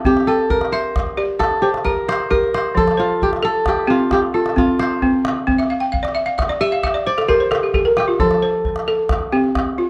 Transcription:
Already playing: A4
0.05 C4 G4, calabash thump
0.17 calabash click
0.27 A4 G5
0.39 calabash click
0.50 A#4, calabash thump, calabash click
0.61 calabash click
0.72 C5 E5
0.96 calabash thump, calabash click
1.07 calabash click
1.17 G4 D5
1.39 A4, calabash thump, calabash click
1.62 G4 C5
1.74 calabash click
1.84 G4 A#4, calabash thump, calabash click
2.08 C5, calabash click
2.20 calabash click
2.31 G4 A#4, calabash thump, calabash click
2.44 calabash click
2.54 C5, calabash click
2.75 F3 A4, calabash thump
2.88 calabash click
2.97 F4 C5
3.22 G4, calabash thump
3.33 calabash click
3.43 A4
3.66 G4, calabash thump, calabash click
3.87 C4 F4 G4, calabash click
4.00 calabash click
4.11 G4, calabash thump, calabash click
4.22 calabash click
4.34 F4 A4
4.46 calabash click
4.56 C4 F4, calabash thump
4.79 C5, calabash click
5.02 C4, calabash thump
5.25 calabash click
5.36 calabash click
5.47 C4, calabash thump
5.58 E5, calabash click
5.70 F5
5.80 G5
5.92 F5, calabash thump
6.03 D5, calabash click
6.15 E5
6.26 F5
6.38 E5, calabash thump, calabash click
6.49 D5
6.61 G4 E5, calabash click
6.72 F5, calabash click
6.83 E5, calabash thump, calabash click
6.94 D5, calabash click
7.07 C5 D5
7.18 A4, calabash click
7.28 G4 A#4 C5, calabash thump
7.40 C5
7.51 A4, calabash click
7.63 G4
7.74 G4 A4, calabash thump
7.85 A#4
7.97 G4, calabash click
8.08 F4, calabash click
8.20 F3 A4, calabash thump
8.31 calabash click
8.42 C5
8.65 calabash thump
8.76 calabash click
8.88 A4
9.09 calabash thump, calabash click
9.32 C4 G4, calabash click
9.44 calabash click
9.55 calabash thump, calabash click
9.78 F4

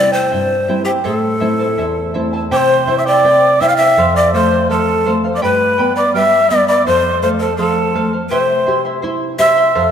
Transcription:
Already playing: C3 G3 C4 E4 C5 D5 E5 G5
0.12 E4 C5 G5
0.30 G2 E4 C5 E5 G5
0.68 G3 C4 E4 C5 E5 G5
0.85 E4 G4 C5 G5
1.04 A2 E4 A4 C5 E5 A5
1.40 A3 C4 E4 C5 E5 A5
1.59 E4 C5 A5
1.78 E2 E4 C5 E5 A5
2.14 A3 C4 E4 C5 E5 A5
2.33 E4 C5 A5
2.51 C3 E4 G4 C5 E5 G5 D6
2.57 C6
2.87 E4 C5 E5 G5
2.98 E5 E6
3.06 E4 C5 D5 G5 D6
3.24 C4 E4 C5 E5 G5
3.60 E4 C5 E5 G5 E6
3.68 F5 F6
3.75 E5 E6 F6
3.79 E4 C5 G5
3.97 F2 A4 C5 F5
4.16 D5 D6
4.33 A3 A4 C5 F5 D6
4.38 C6
4.51 C5 F5
4.69 F3 A4 C5 F5 A5
5.06 A3 A4 C5 F5
5.24 C5 F5
5.35 D5 D6
5.42 G2 G4 B4 D5 G5 B5
5.78 B3 B4 D5 G5 B5
5.96 B4 D5 B5 D6
6.14 G3 B4 D5 E5 G5 B5 F6
6.19 E6
6.49 B3 B4 D5 G5 B5 D6
6.68 B4 D5 B5 D6
6.87 F2 A4 C5 F5 C6
7.22 A3 A4 C5 F5 C6
7.40 A4 C5 F5 A5
7.57 F3 A4 C5 F5 A5
7.94 A3 A4 C5 F5
8.13 C5 F5
8.29 C3 E4 G4 C5 E5 C6
8.67 E4 G4 C5 E5 C6
8.85 E4 E5 C6
9.02 E4 C5 E5 C6
9.39 E4 G4 C5 E5 C6 E6
9.57 E4 E5 C6
9.75 F2 A4 C5 F5

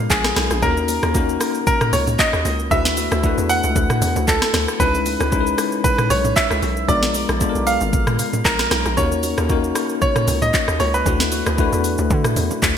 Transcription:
Already playing: G#3 B3 D4 F4 A#4 F5
0.10 A#1 G#4, kick, clap, high bongo, shaker
0.24 cross-stick, snare, shaker
0.36 B1, cross-stick, snare, open hi-hat, low bongo, shaker
0.51 A#1, cross-stick, shaker
0.62 D#2 A#3 C#4 D#4 F#4 A4 A#4, kick, low conga, shaker
0.71 A#4
0.77 low bongo, shaker
0.88 open hi-hat, high bongo, shaker
1.03 D#2, cross-stick, low bongo, shaker
1.14 A#3 C#4 D#4 F#4 A#4, kick, high bongo, shaker
1.29 shaker
1.41 cross-stick, open hi-hat, shaker
1.54 shaker
1.67 A#4, kick, low conga, shaker
1.81 cross-stick, mid tom, shaker
1.93 C#2 C#5, open hi-hat, low conga, shaker
2.07 mid tom, low bongo, shaker
2.19 D#5, kick, clap, high bongo, shaker
2.33 D#2, cross-stick, shaker
2.45 C#2, open hi-hat, low bongo, shaker
2.59 shaker
2.71 D2 A3 D4 E4 F#4 B4 E5, kick, low conga, shaker
2.85 snare, low bongo, shaker
2.97 open hi-hat, high bongo, shaker
3.11 D2, cross-stick, low bongo, shaker
3.23 A3 D4 E4 F#4 B4, kick, high bongo, shaker
3.38 E2, shaker
3.49 F#5, open hi-hat, shaker
3.63 C#2, shaker
3.76 D2, kick, low conga, shaker
3.90 cross-stick, mid tom, shaker
4.01 E2, open hi-hat, low conga, shaker
4.16 D2, low bongo, shaker
4.27 C#2 A4, kick, clap, high bongo, shaker
4.42 cross-stick, snare, shaker
4.54 D2, cross-stick, snare, open hi-hat, low bongo, shaker
4.68 cross-stick, shaker
4.79 C#2 G#3 C#4 D#4 E4 B4, kick, low conga, shaker
4.94 low bongo, shaker
5.06 open hi-hat, high bongo, shaker
5.20 C#2, cross-stick, low bongo, shaker
5.31 G#3 C#4 D#4 E4 A#4, kick, high bongo, shaker
5.41 B4
5.47 shaker
5.58 cross-stick, open hi-hat, shaker
5.72 shaker
5.84 B4, kick, low conga, shaker
5.98 cross-stick, mid tom, shaker
6.10 B1 C#5, open hi-hat, low conga, shaker
6.25 mid tom, low bongo, shaker
6.36 E5, kick, clap, high bongo, shaker
6.51 C#2, cross-stick, shaker
6.62 B1, open hi-hat, low bongo, shaker
6.77 shaker
6.88 A#1 G#3 B3 D4 F4 A#4 D5, kick, low conga, shaker
7.03 snare, low bongo, shaker
7.14 open hi-hat, high bongo, shaker
7.29 A#1, cross-stick, low bongo, shaker
7.40 G#3 B3 D4 F4 A4, kick, high bongo, shaker
7.49 A#4
7.55 B1, shaker
7.67 F5, open hi-hat, shaker
7.81 G#1, shaker
7.93 kick, low conga, shaker
8.07 cross-stick, mid tom, shaker
8.19 open hi-hat, low conga, shaker
8.33 mid tom, low bongo, shaker
8.45 A#1 A#4, kick, clap, high bongo, shaker
8.59 cross-stick, snare, shaker
8.71 B1, cross-stick, snare, open hi-hat, low bongo, shaker
8.85 A#1, cross-stick, shaker
8.97 D#2 A#3 C#4 D#4 F#4 A#4 C#5, kick, low conga, shaker
9.12 low bongo, shaker
9.23 open hi-hat, high bongo, shaker
9.38 D#2, cross-stick, low bongo, shaker
9.49 A#3 C#4 D#4 F#4 A#4, kick, high bongo, shaker
9.64 shaker
9.75 cross-stick, open hi-hat, shaker
9.89 shaker
10.02 C#5, kick, low conga, shaker
10.16 cross-stick, mid tom, shaker
10.28 C#2, open hi-hat, low conga, shaker
10.42 D#5, mid tom, low bongo, shaker
10.53 kick, clap, high bongo, shaker
10.68 D#2, cross-stick, shaker
10.80 C#2 C#5, open hi-hat, low bongo, shaker
10.94 B4, shaker
11.05 D2 A3 D4 E4 F#4 B4, kick, low conga, shaker
11.20 snare, low bongo, shaker
11.32 open hi-hat, high bongo, shaker
11.46 D2, cross-stick, low bongo, shaker
11.57 A3 D4 E4 F#4 B4, kick, high bongo, shaker
11.73 E2, shaker
11.84 open hi-hat, shaker
11.98 D2, shaker
12.10 D3, kick, low conga, shaker
12.24 cross-stick, mid tom, shaker
12.36 E2, open hi-hat, low conga, shaker
12.51 low bongo, shaker
12.62 D2, kick, clap, high bongo, shaker

